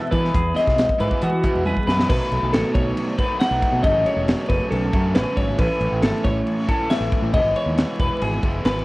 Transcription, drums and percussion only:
0.12 kick medium
0.12 closed hi-hat medium
0.25 snare soft
0.35 kick loud
0.35 closed hi-hat medium
0.56 snare soft
0.56 closed hi-hat medium
0.67 kick medium
0.67 snare soft
0.78 snare loud
0.78 closed hi-hat medium
0.89 kick medium
1.00 closed hi-hat medium
1.11 kick medium
1.22 closed hi-hat medium
1.44 kick medium
1.44 closed hi-hat medium
1.66 high tom medium
1.77 kick medium
1.89 snare medium
1.99 snare medium
2.10 kick loud
2.10 crash loud
2.10 crash medium
2.32 crash medium
2.53 snare loud
2.53 crash medium
2.75 kick medium
2.75 crash medium
2.97 crash medium
3.18 kick medium
3.18 crash medium
3.40 snare loud
3.40 crash medium
3.62 kick medium
3.62 crash medium
3.84 kick loud
3.84 crash medium
4.06 crash medium
4.28 snare loud
4.28 crash medium
4.50 kick medium
4.50 crash medium
4.72 crash medium
4.93 kick medium
4.93 crash medium
5.15 snare loud
5.15 crash medium
5.37 kick medium
5.37 crash medium
5.59 kick loud
5.59 crash medium
5.81 crash medium
6.02 snare loud
6.02 crash medium
6.25 kick medium
6.25 crash medium
6.46 crash medium
6.68 kick medium
6.68 crash medium
6.90 snare loud
6.90 crash medium
7.12 kick medium
7.12 crash medium
7.34 kick loud
7.34 crash medium
7.56 crash medium
7.78 snare loud
7.78 crash medium
8.00 kick medium
8.00 crash medium
8.22 crash medium
8.43 kick medium
8.43 crash medium
8.65 snare loud
8.65 crash medium

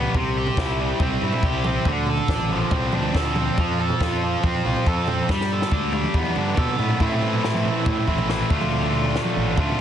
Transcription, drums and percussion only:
0.14 kick loud
0.14 floor tom medium
0.47 floor tom medium
0.57 kick loud
0.57 snare medium
1.00 kick loud
1.00 floor tom medium
1.11 floor tom medium
1.21 floor tom medium
1.33 floor tom medium
1.43 kick loud
1.64 floor tom medium
1.64 mid tom medium
1.85 kick loud
1.85 floor tom medium
2.06 floor tom medium
2.17 floor tom medium
2.28 kick loud
2.28 snare medium
2.39 floor tom medium
2.39 mid tom medium
2.49 mid tom medium
2.71 kick loud
2.71 floor tom medium
2.92 floor tom medium
2.92 mid tom medium
3.03 floor tom medium
3.15 kick loud
3.15 snare medium
3.36 floor tom medium
3.36 mid tom medium
3.58 kick loud
3.58 floor tom medium
3.90 floor tom medium
4.01 kick medium
4.01 snare medium
4.43 kick loud
4.43 floor tom medium
4.54 floor tom medium
4.65 floor tom medium
4.76 floor tom medium
4.86 kick loud
5.08 floor tom medium
5.08 mid tom medium
5.29 kick loud
5.29 snare medium
5.41 snare soft
5.62 snare soft
5.71 kick loud
5.71 high tom medium
5.92 high tom medium
6.03 mid tom medium
6.14 kick loud
6.25 mid tom medium
6.36 mid tom medium
6.57 kick loud
6.57 mid tom medium
6.68 floor tom medium
6.79 floor tom medium
6.90 floor tom medium
7.00 kick loud
7.00 floor tom medium
7.11 floor tom medium
7.22 floor tom medium
7.33 floor tom medium
7.44 snare medium
7.54 mid tom medium
7.65 floor tom medium
7.86 kick loud
7.86 floor tom medium
7.97 floor tom medium
8.07 kick medium
8.07 mid tom medium
8.18 floor tom medium
8.18 mid tom medium
8.29 snare medium
8.50 kick loud
8.61 floor tom medium
8.61 mid tom medium
8.72 floor tom medium
8.83 floor tom medium
8.93 floor tom medium
9.04 floor tom medium
9.16 snare medium
9.25 mid tom medium
9.36 floor tom medium
9.57 kick loud
9.57 floor tom medium
9.69 floor tom medium

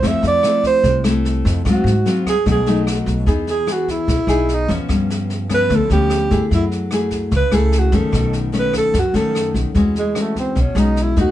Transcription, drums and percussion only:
0.03 kick medium
0.03 snare soft
0.23 snare soft
0.43 cross-stick medium
0.43 snare soft
0.63 kick soft
0.63 snare soft
0.84 kick medium
0.84 snare soft
1.04 cross-stick medium
1.04 snare soft
1.25 snare soft
1.45 kick soft
1.45 snare soft
1.65 kick medium
1.65 cross-stick medium
1.65 snare soft
1.87 snare soft
2.06 snare soft
2.26 kick soft
2.26 cross-stick medium
2.26 snare soft
2.46 kick medium
2.46 snare soft
2.67 snare soft
2.87 cross-stick medium
2.87 snare soft
3.07 kick soft
3.07 snare soft
3.27 kick medium
3.27 snare soft
3.47 snare soft
3.67 cross-stick medium
3.67 snare soft
3.88 kick soft
3.88 snare soft
4.08 kick medium
4.08 snare soft
4.28 cross-stick medium
4.28 snare soft
4.49 snare soft
4.69 kick soft
4.69 snare soft
4.89 kick medium
4.89 cross-stick medium
4.89 snare soft
5.10 snare soft
5.30 snare soft
5.50 kick soft
5.50 cross-stick medium
5.50 snare soft
5.70 kick medium
5.70 snare soft
5.90 snare soft
6.10 cross-stick medium
6.10 snare soft
6.31 kick soft
6.31 snare soft
6.51 kick medium
6.51 snare soft
6.71 snare soft
6.91 cross-stick medium
6.91 snare soft
7.11 kick soft
7.11 snare soft
7.31 kick medium
7.31 snare soft
7.52 cross-stick medium
7.52 snare soft
7.72 snare soft
7.92 kick soft
7.92 snare soft
8.13 kick medium
8.13 cross-stick medium
8.13 snare soft
8.33 snare soft
8.53 snare soft
8.73 kick soft
8.73 cross-stick medium
8.73 snare soft
8.94 kick medium
8.94 snare soft
9.15 snare soft
9.35 cross-stick medium
9.35 snare soft
9.55 kick soft
9.55 snare soft
9.75 kick medium
9.75 snare soft
9.96 snare soft
10.15 cross-stick medium
10.15 snare soft
10.36 kick soft
10.36 snare soft
10.56 kick medium
10.56 snare soft
10.77 cross-stick medium
10.77 snare soft
10.96 snare soft
11.17 kick soft
11.17 snare soft

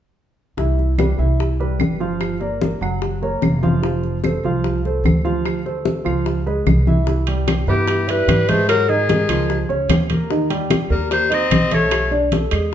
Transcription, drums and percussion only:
0.58 high bongo medium
0.58 high conga soft
0.78 high bongo soft
0.78 high conga soft
0.99 high bongo soft
0.99 high conga medium
0.99 claves medium
1.19 high conga soft
1.39 high bongo medium
1.39 high conga soft
1.59 high bongo soft
1.59 high conga soft
1.80 high bongo soft
1.80 low bongo medium
1.80 high conga medium
1.80 claves medium
2.01 high bongo soft
2.20 high bongo medium
2.20 high conga soft
2.20 claves medium
2.41 high bongo soft
2.41 high conga soft
2.61 high bongo medium
2.61 high conga medium
2.82 high conga soft
2.82 claves medium
3.02 high bongo medium
3.02 high conga soft
3.23 high bongo soft
3.23 high conga soft
3.42 high bongo soft
3.42 low bongo medium
3.42 high conga medium
3.42 claves medium
3.63 high bongo soft
3.63 high conga medium
3.83 high bongo medium
3.83 high conga soft
4.03 high bongo soft
4.03 high conga soft
4.24 high bongo soft
4.24 high conga medium
4.24 claves medium
4.44 high conga soft
4.64 high bongo medium
4.64 high conga soft
4.85 high bongo soft
4.85 high conga soft
5.05 high bongo soft
5.05 low bongo medium
5.05 high conga medium
5.05 claves medium
5.26 high bongo soft
5.45 high bongo medium
5.45 high conga soft
5.45 claves medium
5.66 high bongo soft
5.66 high conga soft
5.85 high bongo medium
5.85 high conga medium
6.06 high conga soft
6.06 claves medium
6.26 high bongo medium
6.26 high conga soft
6.47 high bongo soft
6.47 high conga soft
6.67 high bongo soft
6.67 low bongo medium
6.67 high conga medium
6.67 claves medium
6.87 high bongo soft
6.87 high conga medium
7.07 high bongo medium
7.07 high conga soft
7.27 high bongo soft
7.27 high conga soft
7.27 high timbale medium
7.48 high bongo medium
7.48 high conga medium
7.48 high timbale medium
7.48 claves medium
7.68 high conga soft
7.88 high bongo medium
7.88 high conga soft
7.88 high timbale medium
8.08 high bongo soft
8.08 high conga soft
8.08 high timbale medium
8.28 high bongo soft
8.28 low bongo medium
8.28 high conga medium
8.28 high timbale medium
8.28 claves medium
8.49 high bongo soft
8.49 high conga medium
8.49 high timbale medium
8.69 high bongo medium
8.69 high conga soft
8.69 high timbale medium
8.69 claves medium
8.89 high bongo soft
8.89 high conga soft
9.09 high bongo medium
9.09 high conga medium
9.09 high timbale medium
9.29 high conga soft
9.29 high timbale medium
9.29 claves medium
9.50 high bongo medium
9.50 high conga soft
9.70 high bongo soft
9.70 high conga soft
9.90 high bongo soft
9.90 low bongo medium
9.90 high conga medium
9.90 high timbale medium
9.90 low timbale medium
9.90 claves medium
10.10 high bongo soft
10.10 high conga medium
10.10 high timbale medium
10.31 high bongo medium
10.31 high conga soft
10.50 high bongo soft
10.50 high conga soft
10.50 high timbale medium
10.70 high bongo medium
10.70 high conga medium
10.70 high timbale medium
10.70 claves medium
10.91 high conga soft
11.11 high bongo medium
11.11 high conga soft
11.11 high timbale medium
11.31 high bongo soft
11.31 high conga soft
11.31 high timbale medium
11.51 high bongo soft
11.51 low bongo medium
11.51 high conga medium
11.51 high timbale medium
11.51 claves medium
11.71 high bongo soft
11.71 high conga medium
11.71 high timbale medium
11.91 high bongo medium
11.91 high timbale medium
11.91 claves medium
12.12 high bongo soft
12.12 high conga soft
12.32 high bongo medium
12.32 high conga medium
12.32 high timbale medium
12.51 high conga soft
12.51 high timbale medium
12.51 claves medium

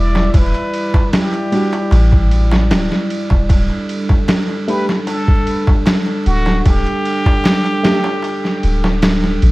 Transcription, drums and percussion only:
0.15 snare soft
0.15 darbuka tek medium
0.34 kick loud
0.34 ride medium
0.34 darbuka tek medium
0.54 ride soft
0.54 darbuka tek soft
0.74 ride medium
0.94 kick medium
0.94 darbuka tek medium
1.13 snare loud
1.13 ride medium
1.13 darbuka tek medium
1.33 ride soft
1.33 darbuka tek soft
1.52 ride medium
1.73 ride soft
1.73 darbuka tek medium
1.91 ride medium
1.91 darbuka tek medium
2.12 kick loud
2.12 darbuka tek soft
2.31 ride medium
2.51 snare medium
2.51 darbuka tek medium
2.71 snare loud
2.71 ride medium
2.71 darbuka tek medium
2.92 snare soft
2.92 darbuka tek soft
3.10 ride medium
3.30 kick medium
3.30 darbuka tek medium
3.49 kick loud
3.49 ride medium
3.49 darbuka tek medium
3.70 darbuka tek soft
3.89 ride medium
4.09 kick medium
4.09 darbuka tek medium
4.28 snare loud
4.28 ride medium
4.28 darbuka tek medium
4.49 darbuka tek soft
4.68 ride medium
4.89 snare soft
4.89 darbuka tek medium
5.07 ride medium
5.07 darbuka tek medium
5.28 kick loud
5.28 darbuka tek soft
5.47 ride medium
5.67 kick medium
5.67 darbuka tek medium
5.86 snare loud
5.86 ride medium
5.86 darbuka tek medium
6.06 darbuka tek soft
6.26 ride medium
6.46 snare soft
6.46 darbuka tek medium
6.65 kick loud
6.65 ride medium
6.65 darbuka tek medium
6.85 ride soft
6.85 darbuka tek soft
7.05 ride medium
7.26 kick medium
7.26 darbuka tek medium
7.44 snare loud
7.44 ride loud
7.44 darbuka tek medium
7.65 ride soft
7.65 darbuka tek soft
7.84 snare loud
7.84 ride medium
8.04 darbuka tek medium
8.22 ride medium
8.22 darbuka tek medium
8.44 snare soft
8.44 darbuka tek soft
8.63 ride medium
8.84 snare medium
8.84 darbuka tek medium
9.02 snare loud
9.02 ride medium
9.02 darbuka tek medium
9.24 snare soft
9.24 darbuka tek soft
9.42 ride medium

